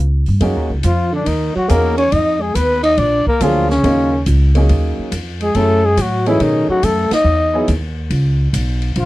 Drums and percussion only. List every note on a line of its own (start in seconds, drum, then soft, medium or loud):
0.26 open hi-hat soft
0.41 kick soft
0.41 ride medium
0.83 kick soft
0.83 hi-hat pedal medium
0.83 ride medium
1.26 kick soft
1.26 ride medium
1.69 kick soft
1.69 hi-hat pedal medium
1.69 ride medium
1.98 ride soft
2.12 kick soft
2.12 ride medium
2.55 kick soft
2.55 hi-hat pedal medium
2.55 ride medium
2.84 ride medium
2.98 kick soft
2.98 ride medium
3.27 kick soft
3.41 kick soft
3.41 hi-hat pedal medium
3.41 ride medium
3.70 snare soft
3.84 kick soft
3.84 ride medium
4.26 kick soft
4.26 hi-hat pedal medium
4.26 ride medium
4.55 ride medium
4.69 kick soft
4.69 ride medium
5.12 kick soft
5.12 hi-hat pedal medium
5.12 ride medium
5.41 ride soft
5.55 kick soft
5.55 ride medium
5.97 kick soft
5.97 hi-hat pedal medium
5.97 ride medium
6.26 ride soft
6.40 kick soft
6.40 ride medium
6.83 kick soft
6.83 hi-hat pedal medium
6.83 ride medium
7.11 snare medium
7.11 ride medium
7.68 kick soft
7.68 hi-hat pedal medium
7.68 ride medium
8.11 kick soft
8.11 ride medium
8.54 kick soft
8.54 hi-hat pedal medium
8.54 ride medium
8.82 ride soft
8.96 kick soft
8.96 ride medium